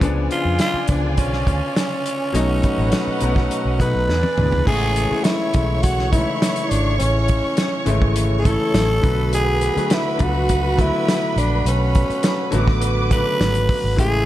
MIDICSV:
0, 0, Header, 1, 8, 480
1, 0, Start_track
1, 0, Tempo, 581959
1, 12, Time_signature, 4, 2, 24, 8
1, 11758, End_track
2, 0, Start_track
2, 0, Title_t, "Violin section"
2, 0, Program_c, 0, 48
2, 16, Note_on_c, 0, 74, 74
2, 17, Note_on_c, 0, 80, 85
2, 18, Note_on_c, 0, 65, 76
2, 1903, Note_off_c, 0, 65, 0
2, 1903, Note_off_c, 0, 74, 0
2, 1903, Note_off_c, 0, 80, 0
2, 1937, Note_on_c, 0, 71, 83
2, 1938, Note_on_c, 0, 63, 75
2, 1939, Note_on_c, 0, 78, 92
2, 3347, Note_off_c, 0, 71, 0
2, 3348, Note_off_c, 0, 63, 0
2, 3348, Note_off_c, 0, 78, 0
2, 3363, Note_on_c, 0, 68, 68
2, 3369, Note_on_c, 0, 59, 66
2, 3370, Note_on_c, 0, 74, 79
2, 3839, Note_off_c, 0, 68, 0
2, 3842, Note_off_c, 0, 59, 0
2, 3843, Note_off_c, 0, 74, 0
2, 3850, Note_on_c, 0, 85, 90
2, 3853, Note_on_c, 0, 73, 82
2, 7418, Note_off_c, 0, 85, 0
2, 7420, Note_off_c, 0, 73, 0
2, 7454, Note_on_c, 0, 71, 93
2, 7458, Note_on_c, 0, 83, 98
2, 10302, Note_off_c, 0, 71, 0
2, 10304, Note_off_c, 0, 83, 0
2, 10339, Note_on_c, 0, 86, 98
2, 10341, Note_on_c, 0, 71, 94
2, 11278, Note_off_c, 0, 86, 0
2, 11279, Note_off_c, 0, 71, 0
2, 11531, Note_on_c, 0, 88, 92
2, 11534, Note_on_c, 0, 76, 82
2, 11758, Note_off_c, 0, 76, 0
2, 11758, Note_off_c, 0, 88, 0
2, 11758, End_track
3, 0, Start_track
3, 0, Title_t, "Tenor saxophone"
3, 0, Program_c, 1, 66
3, 263, Note_on_c, 1, 65, 97
3, 482, Note_off_c, 1, 65, 0
3, 503, Note_on_c, 1, 65, 104
3, 722, Note_off_c, 1, 65, 0
3, 731, Note_on_c, 1, 62, 87
3, 928, Note_on_c, 1, 60, 61
3, 941, Note_off_c, 1, 62, 0
3, 974, Note_on_c, 1, 61, 92
3, 986, Note_off_c, 1, 60, 0
3, 3135, Note_off_c, 1, 61, 0
3, 3140, Note_on_c, 1, 71, 94
3, 3824, Note_off_c, 1, 71, 0
3, 3854, Note_on_c, 1, 68, 109
3, 4320, Note_on_c, 1, 64, 94
3, 4332, Note_off_c, 1, 68, 0
3, 4803, Note_on_c, 1, 66, 96
3, 4815, Note_off_c, 1, 64, 0
3, 5041, Note_off_c, 1, 66, 0
3, 5046, Note_on_c, 1, 64, 90
3, 5524, Note_on_c, 1, 62, 91
3, 5537, Note_off_c, 1, 64, 0
3, 5759, Note_off_c, 1, 62, 0
3, 5764, Note_on_c, 1, 61, 89
3, 6713, Note_off_c, 1, 61, 0
3, 6919, Note_on_c, 1, 68, 88
3, 6979, Note_on_c, 1, 69, 110
3, 6991, Note_off_c, 1, 68, 0
3, 7696, Note_off_c, 1, 69, 0
3, 7706, Note_on_c, 1, 68, 116
3, 8192, Note_on_c, 1, 64, 103
3, 8205, Note_off_c, 1, 68, 0
3, 8437, Note_on_c, 1, 66, 99
3, 8449, Note_off_c, 1, 64, 0
3, 8914, Note_on_c, 1, 64, 100
3, 8926, Note_off_c, 1, 66, 0
3, 9394, Note_on_c, 1, 62, 86
3, 9406, Note_off_c, 1, 64, 0
3, 9624, Note_off_c, 1, 62, 0
3, 9634, Note_on_c, 1, 61, 86
3, 10569, Note_off_c, 1, 61, 0
3, 10823, Note_on_c, 1, 71, 111
3, 11507, Note_off_c, 1, 71, 0
3, 11545, Note_on_c, 1, 68, 108
3, 11758, Note_off_c, 1, 68, 0
3, 11758, End_track
4, 0, Start_track
4, 0, Title_t, "Grand piano"
4, 0, Program_c, 2, 0
4, 0, Control_c, 2, 64, 127
4, 0, Note_on_c, 2, 49, 105
4, 11, Note_on_c, 2, 53, 96
4, 19, Note_on_c, 2, 59, 101
4, 23, Control_c, 2, 64, 0
4, 26, Note_on_c, 2, 62, 121
4, 164, Control_c, 2, 64, 127
4, 524, Note_off_c, 2, 49, 0
4, 531, Note_off_c, 2, 53, 0
4, 535, Note_off_c, 2, 59, 0
4, 539, Note_off_c, 2, 62, 0
4, 715, Note_on_c, 2, 49, 72
4, 728, Note_on_c, 2, 53, 67
4, 735, Note_on_c, 2, 59, 66
4, 747, Note_on_c, 2, 62, 75
4, 810, Note_off_c, 2, 49, 0
4, 817, Note_off_c, 2, 53, 0
4, 821, Note_off_c, 2, 59, 0
4, 827, Note_off_c, 2, 62, 0
4, 833, Note_on_c, 2, 49, 63
4, 844, Note_on_c, 2, 53, 55
4, 855, Note_on_c, 2, 59, 57
4, 865, Note_on_c, 2, 50, 67
4, 1536, Note_off_c, 2, 49, 0
4, 1542, Note_off_c, 2, 53, 0
4, 1547, Note_off_c, 2, 59, 0
4, 1552, Note_off_c, 2, 50, 0
4, 1915, Note_on_c, 2, 47, 103
4, 1926, Note_on_c, 2, 54, 99
4, 1935, Note_on_c, 2, 57, 92
4, 1944, Control_c, 2, 64, 0
4, 1945, Note_on_c, 2, 63, 121
4, 2105, Control_c, 2, 64, 127
4, 2444, Note_off_c, 2, 47, 0
4, 2449, Note_off_c, 2, 54, 0
4, 2454, Note_off_c, 2, 57, 0
4, 2459, Note_off_c, 2, 63, 0
4, 2641, Note_on_c, 2, 47, 81
4, 2650, Note_on_c, 2, 54, 75
4, 2661, Note_on_c, 2, 57, 73
4, 2667, Note_on_c, 2, 59, 91
4, 2734, Note_off_c, 2, 47, 0
4, 2739, Note_off_c, 2, 54, 0
4, 2744, Note_off_c, 2, 57, 0
4, 2747, Note_off_c, 2, 59, 0
4, 2761, Note_on_c, 2, 47, 70
4, 2768, Note_on_c, 2, 54, 65
4, 2778, Note_on_c, 2, 57, 67
4, 2790, Note_on_c, 2, 66, 85
4, 3027, Note_off_c, 2, 47, 0
4, 3031, Note_off_c, 2, 54, 0
4, 3036, Note_off_c, 2, 57, 0
4, 3042, Note_off_c, 2, 66, 0
4, 3120, Note_on_c, 2, 47, 81
4, 3130, Note_on_c, 2, 54, 74
4, 3140, Note_on_c, 2, 57, 68
4, 3153, Note_on_c, 2, 63, 88
4, 3367, Note_off_c, 2, 47, 0
4, 3372, Note_off_c, 2, 54, 0
4, 3377, Note_off_c, 2, 57, 0
4, 3384, Note_off_c, 2, 63, 0
4, 3384, Control_c, 2, 64, 0
4, 3525, Control_c, 2, 64, 127
4, 3602, Note_on_c, 2, 47, 73
4, 3610, Note_on_c, 2, 52, 66
4, 3624, Note_on_c, 2, 56, 64
4, 3632, Note_on_c, 2, 62, 79
4, 3781, Note_off_c, 2, 47, 0
4, 3785, Note_off_c, 2, 52, 0
4, 3792, Note_off_c, 2, 56, 0
4, 3796, Note_off_c, 2, 62, 0
4, 3840, Note_on_c, 2, 49, 95
4, 3846, Note_on_c, 2, 52, 87
4, 3859, Note_on_c, 2, 56, 82
4, 3861, Note_on_c, 2, 57, 91
4, 3863, Control_c, 2, 64, 0
4, 3873, Note_on_c, 2, 64, 108
4, 4018, Control_c, 2, 64, 127
4, 4107, Note_off_c, 2, 49, 0
4, 4110, Note_off_c, 2, 52, 0
4, 4116, Note_off_c, 2, 56, 0
4, 4117, Note_off_c, 2, 57, 0
4, 4123, Note_off_c, 2, 64, 0
4, 4206, Note_on_c, 2, 49, 67
4, 4214, Note_on_c, 2, 52, 62
4, 4219, Note_on_c, 2, 56, 60
4, 4227, Note_on_c, 2, 57, 64
4, 4235, Note_on_c, 2, 64, 75
4, 4470, Note_off_c, 2, 49, 0
4, 4474, Note_off_c, 2, 52, 0
4, 4476, Note_off_c, 2, 56, 0
4, 4480, Note_off_c, 2, 57, 0
4, 4484, Note_off_c, 2, 64, 0
4, 4555, Note_on_c, 2, 49, 76
4, 4566, Note_on_c, 2, 52, 67
4, 4574, Note_on_c, 2, 56, 70
4, 4582, Note_on_c, 2, 57, 71
4, 4586, Note_on_c, 2, 64, 83
4, 4911, Note_off_c, 2, 49, 0
4, 4916, Note_off_c, 2, 52, 0
4, 4920, Note_off_c, 2, 56, 0
4, 4924, Note_off_c, 2, 57, 0
4, 4926, Note_off_c, 2, 64, 0
4, 5037, Note_on_c, 2, 49, 71
4, 5044, Note_on_c, 2, 52, 67
4, 5051, Note_on_c, 2, 56, 67
4, 5061, Note_on_c, 2, 57, 70
4, 5066, Note_on_c, 2, 63, 65
4, 5114, Note_off_c, 2, 63, 0
4, 5122, Note_on_c, 2, 64, 84
4, 5738, Note_off_c, 2, 49, 0
4, 5741, Note_off_c, 2, 52, 0
4, 5745, Note_off_c, 2, 56, 0
4, 5750, Note_off_c, 2, 57, 0
4, 5780, Note_off_c, 2, 64, 0
4, 6473, Note_on_c, 2, 49, 91
4, 6480, Note_on_c, 2, 52, 83
4, 6487, Note_on_c, 2, 56, 82
4, 6494, Note_on_c, 2, 57, 88
4, 6502, Note_on_c, 2, 64, 98
4, 6829, Note_off_c, 2, 49, 0
4, 6833, Note_off_c, 2, 52, 0
4, 6837, Note_off_c, 2, 56, 0
4, 6840, Note_off_c, 2, 57, 0
4, 6844, Note_off_c, 2, 64, 0
4, 6953, Note_on_c, 2, 49, 76
4, 6960, Note_on_c, 2, 52, 68
4, 6975, Note_on_c, 2, 57, 69
4, 6978, Note_on_c, 2, 64, 84
4, 7438, Note_on_c, 2, 50, 78
4, 7441, Note_off_c, 2, 57, 0
4, 7443, Note_off_c, 2, 49, 0
4, 7446, Note_on_c, 2, 54, 70
4, 7447, Note_off_c, 2, 52, 0
4, 7453, Note_on_c, 2, 57, 70
4, 7456, Note_off_c, 2, 64, 0
4, 7460, Note_on_c, 2, 59, 68
4, 7465, Control_c, 2, 64, 0
4, 7466, Note_on_c, 2, 66, 85
4, 7603, Control_c, 2, 64, 127
4, 7926, Note_off_c, 2, 50, 0
4, 7930, Note_off_c, 2, 54, 0
4, 7933, Note_off_c, 2, 57, 0
4, 7937, Note_off_c, 2, 59, 0
4, 7940, Note_off_c, 2, 66, 0
4, 8040, Note_on_c, 2, 50, 69
4, 8048, Note_on_c, 2, 54, 64
4, 8054, Note_on_c, 2, 57, 64
4, 8061, Note_on_c, 2, 59, 62
4, 8069, Note_on_c, 2, 66, 77
4, 8306, Note_off_c, 2, 50, 0
4, 8310, Note_off_c, 2, 54, 0
4, 8313, Note_off_c, 2, 57, 0
4, 8317, Note_off_c, 2, 59, 0
4, 8321, Note_off_c, 2, 66, 0
4, 8392, Note_on_c, 2, 62, 79
4, 8399, Note_on_c, 2, 54, 73
4, 8408, Note_on_c, 2, 57, 71
4, 8416, Note_on_c, 2, 59, 68
4, 8425, Note_on_c, 2, 65, 69
4, 8473, Note_off_c, 2, 65, 0
4, 8475, Note_on_c, 2, 66, 86
4, 8749, Note_off_c, 2, 62, 0
4, 8753, Note_off_c, 2, 54, 0
4, 8757, Note_off_c, 2, 57, 0
4, 8761, Note_off_c, 2, 59, 0
4, 8791, Note_off_c, 2, 66, 0
4, 8875, Note_on_c, 2, 50, 79
4, 8881, Note_on_c, 2, 54, 68
4, 8892, Note_on_c, 2, 57, 67
4, 8901, Note_on_c, 2, 59, 68
4, 8908, Note_on_c, 2, 66, 85
4, 9577, Note_off_c, 2, 50, 0
4, 9580, Note_off_c, 2, 54, 0
4, 9585, Note_off_c, 2, 57, 0
4, 9590, Note_off_c, 2, 59, 0
4, 9593, Note_off_c, 2, 66, 0
4, 10316, Note_on_c, 2, 50, 90
4, 10320, Note_on_c, 2, 54, 82
4, 10330, Note_on_c, 2, 57, 82
4, 10336, Note_on_c, 2, 59, 85
4, 10346, Note_on_c, 2, 66, 105
4, 10672, Note_off_c, 2, 50, 0
4, 10674, Note_off_c, 2, 54, 0
4, 10678, Note_off_c, 2, 57, 0
4, 10681, Note_off_c, 2, 59, 0
4, 10687, Note_off_c, 2, 66, 0
4, 10799, Note_on_c, 2, 49, 60
4, 10803, Note_on_c, 2, 54, 67
4, 10807, Note_on_c, 2, 57, 67
4, 10816, Note_on_c, 2, 59, 66
4, 10827, Note_on_c, 2, 66, 81
4, 10852, Note_on_c, 2, 50, 75
4, 10860, Note_off_c, 2, 49, 0
4, 11328, Note_off_c, 2, 54, 0
4, 11331, Note_off_c, 2, 57, 0
4, 11335, Note_off_c, 2, 59, 0
4, 11340, Note_off_c, 2, 66, 0
4, 11353, Note_off_c, 2, 50, 0
4, 11513, Note_on_c, 2, 49, 92
4, 11518, Note_on_c, 2, 52, 94
4, 11529, Note_on_c, 2, 56, 89
4, 11536, Note_on_c, 2, 57, 87
4, 11540, Note_on_c, 2, 64, 107
4, 11547, Control_c, 2, 64, 0
4, 11698, Control_c, 2, 64, 127
4, 11758, Note_off_c, 2, 49, 0
4, 11758, Note_off_c, 2, 52, 0
4, 11758, Note_off_c, 2, 56, 0
4, 11758, Note_off_c, 2, 57, 0
4, 11758, Note_off_c, 2, 64, 0
4, 11758, End_track
5, 0, Start_track
5, 0, Title_t, "French horn section"
5, 0, Program_c, 3, 60
5, 3868, Note_on_c, 3, 52, 66
5, 3872, Note_on_c, 3, 49, 77
5, 3873, Note_on_c, 3, 64, 83
5, 7427, Note_off_c, 3, 52, 0
5, 7430, Note_off_c, 3, 49, 0
5, 7430, Note_off_c, 3, 64, 0
5, 7445, Note_on_c, 3, 66, 76
5, 7449, Note_on_c, 3, 47, 74
5, 7450, Note_on_c, 3, 59, 66
5, 11498, Note_off_c, 3, 66, 0
5, 11500, Note_off_c, 3, 47, 0
5, 11501, Note_off_c, 3, 59, 0
5, 11520, Note_on_c, 3, 52, 71
5, 11525, Note_on_c, 3, 64, 85
5, 11526, Note_on_c, 3, 49, 75
5, 11758, Note_off_c, 3, 49, 0
5, 11758, Note_off_c, 3, 52, 0
5, 11758, Note_off_c, 3, 64, 0
5, 11758, End_track
6, 0, Start_track
6, 0, Title_t, "Fingered electric bass"
6, 0, Program_c, 4, 33
6, 11, Note_on_c, 4, 37, 100
6, 225, Note_off_c, 4, 37, 0
6, 371, Note_on_c, 4, 41, 87
6, 478, Note_off_c, 4, 41, 0
6, 733, Note_on_c, 4, 37, 86
6, 971, Note_off_c, 4, 37, 0
6, 971, Note_on_c, 4, 35, 86
6, 1185, Note_off_c, 4, 35, 0
6, 1213, Note_on_c, 4, 38, 78
6, 1320, Note_off_c, 4, 38, 0
6, 1930, Note_on_c, 4, 35, 101
6, 2145, Note_off_c, 4, 35, 0
6, 2291, Note_on_c, 4, 33, 84
6, 2399, Note_off_c, 4, 33, 0
6, 2655, Note_on_c, 4, 35, 88
6, 2868, Note_off_c, 4, 35, 0
6, 3010, Note_on_c, 4, 35, 80
6, 3119, Note_off_c, 4, 35, 0
6, 3132, Note_on_c, 4, 47, 81
6, 3240, Note_off_c, 4, 47, 0
6, 3255, Note_on_c, 4, 35, 77
6, 3361, Note_off_c, 4, 35, 0
6, 3375, Note_on_c, 4, 40, 87
6, 3481, Note_off_c, 4, 40, 0
6, 3613, Note_on_c, 4, 38, 86
6, 3720, Note_off_c, 4, 38, 0
6, 3734, Note_on_c, 4, 37, 85
6, 3841, Note_off_c, 4, 37, 0
6, 3852, Note_on_c, 4, 33, 95
6, 4173, Note_off_c, 4, 33, 0
6, 4575, Note_on_c, 4, 35, 98
6, 5145, Note_off_c, 4, 35, 0
6, 5536, Note_on_c, 4, 32, 95
6, 5748, Note_off_c, 4, 32, 0
6, 5778, Note_on_c, 4, 33, 101
6, 6096, Note_off_c, 4, 33, 0
6, 6489, Note_on_c, 4, 32, 99
6, 7061, Note_off_c, 4, 32, 0
6, 7210, Note_on_c, 4, 33, 92
6, 7425, Note_off_c, 4, 33, 0
6, 7454, Note_on_c, 4, 35, 103
6, 7988, Note_off_c, 4, 35, 0
6, 8416, Note_on_c, 4, 37, 90
6, 8985, Note_off_c, 4, 37, 0
6, 9371, Note_on_c, 4, 34, 95
6, 9586, Note_off_c, 4, 34, 0
6, 9612, Note_on_c, 4, 35, 104
6, 9933, Note_off_c, 4, 35, 0
6, 10335, Note_on_c, 4, 33, 98
6, 10905, Note_off_c, 4, 33, 0
6, 11056, Note_on_c, 4, 32, 96
6, 11269, Note_off_c, 4, 32, 0
6, 11413, Note_on_c, 4, 32, 85
6, 11521, Note_off_c, 4, 32, 0
6, 11535, Note_on_c, 4, 33, 94
6, 11758, Note_off_c, 4, 33, 0
6, 11758, End_track
7, 0, Start_track
7, 0, Title_t, "Muted fingered electric bass strokes"
7, 607, Note_on_c, 9, 29, 44
7, 690, Note_off_c, 9, 29, 0
7, 2533, Note_on_c, 9, 29, 44
7, 2616, Note_off_c, 9, 29, 0
7, 4214, Note_on_c, 9, 29, 51
7, 4297, Note_off_c, 9, 29, 0
7, 8054, Note_on_c, 9, 29, 52
7, 8136, Note_off_c, 9, 29, 0
7, 9978, Note_on_c, 9, 29, 49
7, 10060, Note_off_c, 9, 29, 0
7, 11758, End_track
8, 0, Start_track
8, 0, Title_t, "Drums"
8, 12, Note_on_c, 9, 36, 102
8, 14, Note_on_c, 9, 42, 81
8, 94, Note_off_c, 9, 36, 0
8, 97, Note_off_c, 9, 42, 0
8, 253, Note_on_c, 9, 42, 57
8, 336, Note_off_c, 9, 42, 0
8, 484, Note_on_c, 9, 42, 72
8, 492, Note_on_c, 9, 38, 95
8, 566, Note_off_c, 9, 42, 0
8, 575, Note_off_c, 9, 38, 0
8, 722, Note_on_c, 9, 42, 67
8, 733, Note_on_c, 9, 36, 89
8, 804, Note_off_c, 9, 42, 0
8, 815, Note_off_c, 9, 36, 0
8, 968, Note_on_c, 9, 42, 78
8, 973, Note_on_c, 9, 36, 79
8, 1051, Note_off_c, 9, 42, 0
8, 1055, Note_off_c, 9, 36, 0
8, 1095, Note_on_c, 9, 38, 34
8, 1177, Note_off_c, 9, 38, 0
8, 1212, Note_on_c, 9, 36, 83
8, 1215, Note_on_c, 9, 42, 63
8, 1294, Note_off_c, 9, 36, 0
8, 1297, Note_off_c, 9, 42, 0
8, 1456, Note_on_c, 9, 38, 102
8, 1458, Note_on_c, 9, 42, 73
8, 1538, Note_off_c, 9, 38, 0
8, 1541, Note_off_c, 9, 42, 0
8, 1697, Note_on_c, 9, 42, 72
8, 1779, Note_off_c, 9, 42, 0
8, 1936, Note_on_c, 9, 42, 79
8, 2018, Note_off_c, 9, 42, 0
8, 2172, Note_on_c, 9, 42, 57
8, 2177, Note_on_c, 9, 36, 83
8, 2254, Note_off_c, 9, 42, 0
8, 2260, Note_off_c, 9, 36, 0
8, 2406, Note_on_c, 9, 42, 67
8, 2415, Note_on_c, 9, 38, 100
8, 2489, Note_off_c, 9, 42, 0
8, 2497, Note_off_c, 9, 38, 0
8, 2643, Note_on_c, 9, 42, 64
8, 2726, Note_off_c, 9, 42, 0
8, 2771, Note_on_c, 9, 36, 84
8, 2777, Note_on_c, 9, 38, 30
8, 2854, Note_off_c, 9, 36, 0
8, 2860, Note_off_c, 9, 38, 0
8, 2895, Note_on_c, 9, 42, 76
8, 2977, Note_off_c, 9, 42, 0
8, 3133, Note_on_c, 9, 36, 87
8, 3139, Note_on_c, 9, 42, 57
8, 3215, Note_off_c, 9, 36, 0
8, 3221, Note_off_c, 9, 42, 0
8, 3377, Note_on_c, 9, 38, 55
8, 3459, Note_off_c, 9, 38, 0
8, 3491, Note_on_c, 9, 48, 57
8, 3573, Note_off_c, 9, 48, 0
8, 3610, Note_on_c, 9, 45, 80
8, 3692, Note_off_c, 9, 45, 0
8, 3731, Note_on_c, 9, 43, 80
8, 3814, Note_off_c, 9, 43, 0
8, 3852, Note_on_c, 9, 36, 110
8, 3854, Note_on_c, 9, 49, 99
8, 3934, Note_off_c, 9, 36, 0
8, 3936, Note_off_c, 9, 49, 0
8, 4090, Note_on_c, 9, 42, 65
8, 4173, Note_off_c, 9, 42, 0
8, 4322, Note_on_c, 9, 42, 72
8, 4331, Note_on_c, 9, 38, 107
8, 4405, Note_off_c, 9, 42, 0
8, 4413, Note_off_c, 9, 38, 0
8, 4566, Note_on_c, 9, 42, 74
8, 4574, Note_on_c, 9, 36, 95
8, 4648, Note_off_c, 9, 42, 0
8, 4657, Note_off_c, 9, 36, 0
8, 4810, Note_on_c, 9, 42, 87
8, 4815, Note_on_c, 9, 36, 86
8, 4892, Note_off_c, 9, 42, 0
8, 4898, Note_off_c, 9, 36, 0
8, 4937, Note_on_c, 9, 38, 38
8, 5020, Note_off_c, 9, 38, 0
8, 5053, Note_on_c, 9, 36, 92
8, 5057, Note_on_c, 9, 42, 67
8, 5136, Note_off_c, 9, 36, 0
8, 5139, Note_off_c, 9, 42, 0
8, 5295, Note_on_c, 9, 38, 110
8, 5298, Note_on_c, 9, 42, 86
8, 5378, Note_off_c, 9, 38, 0
8, 5381, Note_off_c, 9, 42, 0
8, 5410, Note_on_c, 9, 42, 53
8, 5492, Note_off_c, 9, 42, 0
8, 5535, Note_on_c, 9, 42, 78
8, 5618, Note_off_c, 9, 42, 0
8, 5772, Note_on_c, 9, 42, 85
8, 5854, Note_off_c, 9, 42, 0
8, 6008, Note_on_c, 9, 42, 62
8, 6017, Note_on_c, 9, 36, 88
8, 6090, Note_off_c, 9, 42, 0
8, 6100, Note_off_c, 9, 36, 0
8, 6243, Note_on_c, 9, 42, 77
8, 6251, Note_on_c, 9, 38, 106
8, 6325, Note_off_c, 9, 42, 0
8, 6334, Note_off_c, 9, 38, 0
8, 6484, Note_on_c, 9, 42, 74
8, 6566, Note_off_c, 9, 42, 0
8, 6612, Note_on_c, 9, 36, 92
8, 6694, Note_off_c, 9, 36, 0
8, 6728, Note_on_c, 9, 42, 92
8, 6811, Note_off_c, 9, 42, 0
8, 6972, Note_on_c, 9, 36, 93
8, 6972, Note_on_c, 9, 42, 65
8, 7054, Note_off_c, 9, 42, 0
8, 7055, Note_off_c, 9, 36, 0
8, 7213, Note_on_c, 9, 38, 112
8, 7215, Note_on_c, 9, 42, 87
8, 7295, Note_off_c, 9, 38, 0
8, 7298, Note_off_c, 9, 42, 0
8, 7453, Note_on_c, 9, 36, 104
8, 7457, Note_on_c, 9, 42, 72
8, 7536, Note_off_c, 9, 36, 0
8, 7540, Note_off_c, 9, 42, 0
8, 7694, Note_on_c, 9, 42, 90
8, 7776, Note_off_c, 9, 42, 0
8, 7928, Note_on_c, 9, 42, 61
8, 8011, Note_off_c, 9, 42, 0
8, 8062, Note_on_c, 9, 42, 42
8, 8144, Note_off_c, 9, 42, 0
8, 8167, Note_on_c, 9, 42, 81
8, 8175, Note_on_c, 9, 38, 108
8, 8249, Note_off_c, 9, 42, 0
8, 8258, Note_off_c, 9, 38, 0
8, 8406, Note_on_c, 9, 42, 70
8, 8416, Note_on_c, 9, 36, 93
8, 8488, Note_off_c, 9, 42, 0
8, 8499, Note_off_c, 9, 36, 0
8, 8652, Note_on_c, 9, 42, 84
8, 8658, Note_on_c, 9, 36, 87
8, 8735, Note_off_c, 9, 42, 0
8, 8740, Note_off_c, 9, 36, 0
8, 8896, Note_on_c, 9, 36, 95
8, 8898, Note_on_c, 9, 42, 66
8, 8979, Note_off_c, 9, 36, 0
8, 8981, Note_off_c, 9, 42, 0
8, 9143, Note_on_c, 9, 38, 107
8, 9146, Note_on_c, 9, 42, 83
8, 9225, Note_off_c, 9, 38, 0
8, 9228, Note_off_c, 9, 42, 0
8, 9383, Note_on_c, 9, 42, 76
8, 9466, Note_off_c, 9, 42, 0
8, 9620, Note_on_c, 9, 42, 86
8, 9702, Note_off_c, 9, 42, 0
8, 9855, Note_on_c, 9, 42, 62
8, 9861, Note_on_c, 9, 36, 92
8, 9938, Note_off_c, 9, 42, 0
8, 9943, Note_off_c, 9, 36, 0
8, 9984, Note_on_c, 9, 42, 41
8, 10066, Note_off_c, 9, 42, 0
8, 10087, Note_on_c, 9, 42, 79
8, 10095, Note_on_c, 9, 38, 110
8, 10169, Note_off_c, 9, 42, 0
8, 10178, Note_off_c, 9, 38, 0
8, 10325, Note_on_c, 9, 42, 75
8, 10408, Note_off_c, 9, 42, 0
8, 10454, Note_on_c, 9, 36, 88
8, 10457, Note_on_c, 9, 38, 34
8, 10537, Note_off_c, 9, 36, 0
8, 10539, Note_off_c, 9, 38, 0
8, 10570, Note_on_c, 9, 42, 81
8, 10652, Note_off_c, 9, 42, 0
8, 10812, Note_on_c, 9, 42, 64
8, 10814, Note_on_c, 9, 36, 87
8, 10895, Note_off_c, 9, 42, 0
8, 10896, Note_off_c, 9, 36, 0
8, 11058, Note_on_c, 9, 38, 103
8, 11061, Note_on_c, 9, 42, 84
8, 11140, Note_off_c, 9, 38, 0
8, 11143, Note_off_c, 9, 42, 0
8, 11174, Note_on_c, 9, 42, 54
8, 11256, Note_off_c, 9, 42, 0
8, 11292, Note_on_c, 9, 36, 109
8, 11296, Note_on_c, 9, 46, 76
8, 11375, Note_off_c, 9, 36, 0
8, 11379, Note_off_c, 9, 46, 0
8, 11535, Note_on_c, 9, 36, 105
8, 11536, Note_on_c, 9, 42, 92
8, 11618, Note_off_c, 9, 36, 0
8, 11618, Note_off_c, 9, 42, 0
8, 11758, End_track
0, 0, End_of_file